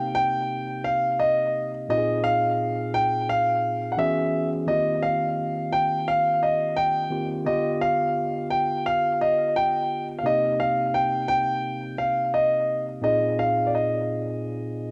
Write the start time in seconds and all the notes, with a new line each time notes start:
Already playing: C3 A#3 C4 D#4 G4 G5
0.15 G5
0.84 F5
1.19 D#5
1.89 A#2 C4 D#4 F4 G4 D#5
1.97 G#4
2.24 F5
2.94 G5
3.29 F5
3.92 F#5
3.97 E3 B3 C#4 F#4 G#4 E5
4.67 D#3 A#3 C4 F4 G4 D#5
5.03 F5
5.73 G5
6.08 F5
6.43 D#5
6.77 G5
7.10 D#3 A#3 C4 F4 G4
7.45 D3 B3 F4 G4 D#5
7.81 F5
8.50 G5
8.86 F5
9.21 D#5
9.56 G5
10.19 F5
10.23 C3 A#3 C4 D#4 G4 D#5
10.60 F5
10.94 G5
11.28 G5
11.98 F5
12.34 D#5
13.01 A#2 C4 D#4 F4 G#4 D#5
13.39 F5
13.67 D5
13.75 D#5